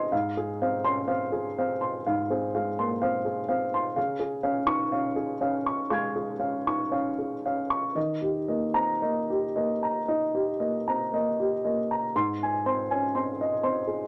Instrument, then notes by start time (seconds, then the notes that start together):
upright piano
Already playing: D#3 C4 C#4 G#4 D#5 C6
0.12 G#2 F5
0.37 G#4
0.62 C4 F5
0.85 C#4 C6
1.08 C4 F5
1.32 G#4
1.58 C4 F5
1.81 C6
2.06 G#2 F5
2.30 C4 G#4
2.55 G#3 F5
2.79 A#3 C6
3.02 C4 F5
3.25 G#4
3.49 C4 F5
3.74 C6
3.96 C#3 F5
4.20 G#4
4.43 C#4 F5
4.67 D#4 C#6
4.92 C#4 F5
5.16 G#4
5.41 C#4 F5
5.66 C#6
5.90 G#3 F5 C#6 G#6
6.16 G#4
6.39 C#4 F5
6.67 D#4 C#6
6.91 C#4 F5
7.18 G#4
7.46 C#4 F5
7.70 C#6
7.95 D#3 D#5
8.22 G4
8.48 A#3 D#5
8.74 C4 A#5
9.02 A#3 D#5
9.30 G4
9.56 A#3 D#5
9.83 A#5
10.08 D#4 D#5
10.35 G4
10.60 A#3 D#5
10.88 C4 A#5
11.13 A#3 D#5
11.40 G4
11.65 A#3 D#5
11.91 A#5
12.15 G#2 C6
12.43 G#5
12.66 C4 C6
12.91 C#4 G#5
13.15 C4 C6
13.41 D#5
13.63 C4 C6
13.87 G#4